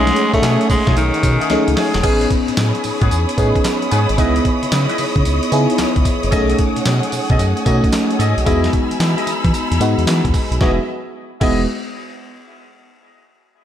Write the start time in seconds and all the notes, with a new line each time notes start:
Already playing: B1 G#3 A3 C#4 D#4 G#4 C#5 F#5 G#5 D#6
0.07 snare, closed hi-hat
0.16 closed hi-hat
0.33 B2 A3 C#4 D#4 G#4, kick, closed hi-hat
0.42 B2 A3 C#4 D#4 G#4, snare, clap, closed hi-hat, tambourine
0.61 closed hi-hat
0.69 B2 G#3, kick, open hi-hat, tambourine
0.87 B2 A3 C#4 D#4 G#4, kick, snare, closed hi-hat
0.96 B1 D#3, closed hi-hat, tambourine
1.14 closed hi-hat
1.23 B2, kick, closed hi-hat, tambourine
1.41 A3 C#4 D#4 G#4, closed hi-hat
1.50 C#2 A3 C#4 D#4 G#4, snare, closed hi-hat
1.68 C#2, closed hi-hat
1.76 A3 C#4 D#4 G#4, snare, open hi-hat
1.94 E1, snare, closed hi-hat
2.03 A1 B3 C#4 D#4 G#4 C#5 G#5 B5 D#6, kick, closed hi-hat, crash, tambourine
2.21 closed hi-hat
2.31 kick, closed hi-hat
2.48 A2, closed hi-hat
2.57 A2, snare, clap, closed hi-hat, tambourine
2.75 closed hi-hat
2.84 A2, open hi-hat, tambourine
3.01 A2 B3 C#4 D#4 G#4, kick, closed hi-hat
3.11 E2, closed hi-hat, tambourine
3.29 closed hi-hat
3.38 A2 B3 C#4 D#4 G#4, kick, closed hi-hat, tambourine
3.55 kick, closed hi-hat
3.64 snare, clap, closed hi-hat, tambourine
3.82 closed hi-hat
3.91 G#2 B3 C#4 D#4 G#4, closed hi-hat, tambourine
4.09 G#1, closed hi-hat
4.18 C#2 B3 D#4 E4 G#4 B4 D#5, kick, closed hi-hat, tambourine
4.36 closed hi-hat
4.45 kick, closed hi-hat
4.63 C#3, closed hi-hat
4.72 C#3, snare, clap, closed hi-hat, tambourine
4.89 E4 B4 D#5, closed hi-hat
4.98 C#3, open hi-hat, tambourine
5.16 C#3, kick, closed hi-hat
5.25 C#2, closed hi-hat, tambourine
5.43 closed hi-hat
5.52 C#3 B3 D#4 E4 G#4, closed hi-hat, tambourine
5.70 closed hi-hat
5.78 C#2, snare, clap, closed hi-hat, tambourine
5.96 C#2, kick, closed hi-hat
6.05 kick, closed hi-hat, tambourine
6.23 F#1, closed hi-hat
6.32 B1 A3 C#4 D#4 G#4 A4 C#5 D#5 F#5 G#5, kick, closed hi-hat, tambourine
6.50 closed hi-hat
6.59 kick, closed hi-hat
6.76 B2, closed hi-hat
6.85 B2, snare, clap, closed hi-hat, tambourine
7.03 closed hi-hat
7.12 B2, open hi-hat, tambourine
7.30 B2 G#4 A4 C#5 D#5, kick, closed hi-hat
7.39 F#2, closed hi-hat, tambourine
7.57 closed hi-hat
7.65 B2 A3 C#4 D#4 F#4 G#4 A4 C#5 D#5, kick, closed hi-hat, tambourine
7.84 kick, closed hi-hat
7.92 snare, clap, closed hi-hat, tambourine
8.11 closed hi-hat
8.19 G#2 G#4 A4 C#5 D#5, closed hi-hat, tambourine
8.37 B1, closed hi-hat
8.46 E2 G#3 B3 D#4 E4 F#4 G#4 D#5 B5 E6, kick, closed hi-hat, tambourine
8.64 snare, closed hi-hat
8.73 kick, closed hi-hat
8.91 E3, closed hi-hat
9.00 E3, snare, clap, closed hi-hat, tambourine
9.17 E4 G#4 D#5, closed hi-hat
9.27 E3, closed hi-hat, tambourine
9.44 E3, kick, closed hi-hat
9.54 closed hi-hat, tambourine
9.71 E2, closed hi-hat
9.80 G#2 G#3 B3 D#4 F#4, closed hi-hat, tambourine
9.98 E2, closed hi-hat
10.07 E3, snare, clap, closed hi-hat, tambourine
10.25 E2, kick, closed hi-hat
10.34 kick, open hi-hat, tambourine
10.51 B1, closed hi-hat
10.60 E1 G#3 B3 D#4 E4 F#4 G#4 D#5 E5, kick, snare
11.41 E1 G#3 B3 D#4 E4 F#4 G#4 D#5, kick, crash